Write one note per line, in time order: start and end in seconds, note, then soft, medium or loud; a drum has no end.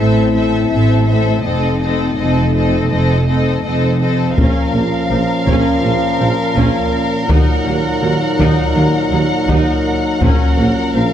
0.00 0.63 A1 medium
0.00 0.63 A2 soft
0.00 0.33 C4 soft
0.00 1.40 C4 medium
0.00 1.40 E4 medium
0.00 0.34 A4 soft
0.00 0.33 E5 soft
0.34 0.69 C4 soft
0.34 0.71 A4 soft
0.34 0.69 E5 soft
0.70 1.36 A1 soft
0.70 1.35 A2 medium
0.70 1.07 C4 soft
0.70 1.08 A4 soft
0.70 1.06 E5 soft
1.07 1.43 C4 soft
1.07 1.44 A4 soft
1.07 1.43 E5 soft
1.43 2.09 F1 soft
1.43 2.09 F2 soft
1.43 4.02 A3 soft
1.43 1.80 C4 soft
1.43 4.02 D#4 soft
1.43 1.81 A4 soft
1.43 1.79 D#5 soft
1.80 2.17 C4 soft
1.80 2.18 A4 soft
1.80 2.15 D#5 soft
2.16 2.82 F1 soft
2.16 2.82 F2 soft
2.16 2.53 C4 soft
2.16 2.54 A4 soft
2.16 2.53 D#5 soft
2.54 2.89 C4 soft
2.54 2.91 A4 soft
2.54 2.89 D#5 soft
2.90 3.55 F1 soft
2.90 3.55 F2 soft
2.90 3.26 C4 soft
2.90 3.27 A4 soft
2.90 3.26 D#5 soft
3.27 3.63 C4 soft
3.27 3.64 A4 soft
3.27 3.63 D#5 soft
3.64 4.29 F1 soft
3.64 4.29 F2 soft
3.64 3.99 C4 soft
3.64 4.00 A4 soft
3.64 4.00 D#5 soft
4.00 4.36 C4 soft
4.00 4.37 A4 soft
4.00 4.37 D#5 soft
4.36 4.45 A#1 medium
4.36 4.52 A#1 soft
4.36 10.18 A#2 medium
4.36 4.46 A#2 medium
4.36 7.26 F3 medium
4.36 10.18 A#3 soft
4.36 7.25 C#4 soft
4.36 4.71 C#4 medium
4.36 10.19 A#4 soft
4.36 7.26 F5 medium
4.36 taiko medium
4.74 4.88 A#1 soft
4.74 4.82 A#1 soft
4.74 4.83 A#2 soft
4.74 4.82 A#3 soft
5.10 5.24 A#1 soft
5.10 5.20 A#1 soft
5.10 5.19 A#2 soft
5.10 5.18 F3 soft
5.46 5.61 A#1 medium
5.46 5.55 A#1 medium
5.46 5.55 A#2 medium
5.46 5.81 C#4 medium
5.46 taiko medium
5.82 5.97 A#1 soft
5.82 5.93 A#1 soft
5.82 5.91 A#2 soft
5.82 5.92 A#3 soft
6.19 6.34 A#1 soft
6.19 6.29 A#1 soft
6.19 6.28 A#2 soft
6.19 6.27 F3 soft
6.56 6.71 A#1 medium
6.56 6.65 A#1 medium
6.56 6.64 A#2 medium
6.56 6.90 C#4 medium
6.56 taiko medium
7.28 7.37 D#2 medium
7.28 7.44 D#2 medium
7.28 7.38 D#3 medium
7.28 10.91 F#3 soft
7.28 10.18 D#4 medium
7.28 7.64 D#4 medium
7.28 10.92 F#5 medium
7.28 taiko medium
7.65 7.81 D#2 soft
7.65 7.74 D#2 soft
7.65 7.74 D#3 soft
7.65 7.73 A#3 soft
8.02 8.10 D#2 soft
8.02 8.17 D#2 soft
8.02 8.10 D#3 soft
8.02 8.10 F#3 soft
8.38 8.53 D#2 medium
8.38 8.47 D#2 medium
8.38 8.47 D#3 medium
8.38 8.73 D#4 medium
8.38 taiko medium
8.75 8.83 D#2 soft
8.75 8.90 D#2 soft
8.75 8.83 D#3 soft
8.75 8.83 A#3 soft
9.11 9.26 D#2 soft
9.11 9.19 D#2 soft
9.11 9.20 D#3 soft
9.11 9.20 F#3 soft
9.48 9.56 D#2 medium
9.48 9.63 D#2 medium
9.48 9.56 D#3 medium
9.48 9.83 D#4 medium
9.48 taiko medium
10.20 10.35 A#1 medium
10.20 10.30 A#1 medium
10.20 10.29 A#2 medium
10.20 11.13 A#2 medium
10.20 11.13 A#3 medium
10.20 11.13 C#4 medium
10.20 10.56 C#4 medium
10.20 11.13 A#4 medium
10.20 taiko medium
10.56 10.72 A#1 soft
10.56 10.66 A#1 soft
10.56 10.65 A#2 soft
10.56 10.65 A#3 soft
10.93 11.09 A#1 soft
10.93 11.03 A#1 soft
10.93 11.03 A#2 soft
10.93 11.01 F3 soft
10.93 11.13 F3 medium
10.93 11.13 F5 medium